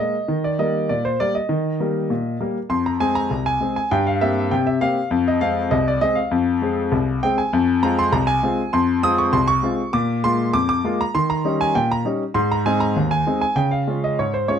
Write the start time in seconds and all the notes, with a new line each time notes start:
Already playing: G#3 D#5
0.00 A#3 A#4
0.28 D#3
0.44 D5
0.59 G3 A#3 A#4 D#5
0.89 A#2 D5
1.05 C5
1.20 G3 A#3 A#4 D5
1.35 D#5
1.49 D#3
1.80 G3 A#3 A#4
2.10 A#2
2.40 G3 A#3 A#4
2.69 F2 C6
2.86 A#5
3.00 G#3 C4 G#4 G#5
3.15 A#5
3.31 C2
3.46 G#5
3.61 G#3 C4 G#4
3.76 G#5
3.91 G2 G5
4.07 F5
4.21 A#3 C4 G4 E5
4.51 C3 G5
4.67 E5
4.81 A#3 C4 G4 F5
5.11 F2
5.28 D#5
5.41 G#3 C4 G#4 F5
5.71 C2 D#5
5.88 D5
6.01 G#3 C4 G#4 D#5
6.15 F5
6.31 F2
6.62 G#3 C4 G#4
6.92 C2
7.23 G#3 C4 G#4 G5
7.38 G#5
7.53 F2
7.83 G#3 C4 F4 A#5
7.99 C6
8.12 C2 A#5
8.27 G#5
8.43 G#3 C4 F4
8.73 F2 C6
9.03 G#3 C4 F4 D#6
9.18 C#6
9.33 C2 C6
9.48 C#6
9.63 G#3 C4 F4
9.93 A#2 D6
10.24 G#3 A#3 F4 C6
10.53 F2 D6
10.69 D6
10.84 G#3 A#3 F4
11.01 A#5
11.15 D#3 C6
11.30 A#5
11.45 G3 C#4 D#4
11.61 G#5
11.75 A#2 G5
11.92 A#5
12.05 G3 C#4 D#4
12.34 G#2 C6
12.52 A#5
12.66 G#3 C4 D#4 G#5
12.80 A#5
12.96 D#2
13.11 G#5
13.27 G#3 C4 D#4
13.41 G#5
13.56 C#3 G5
13.71 F5
13.87 G#3 C#4 F4
14.04 D#5
14.19 G#2 C#5
14.34 C5
14.48 G#3 C#4 F4 C#5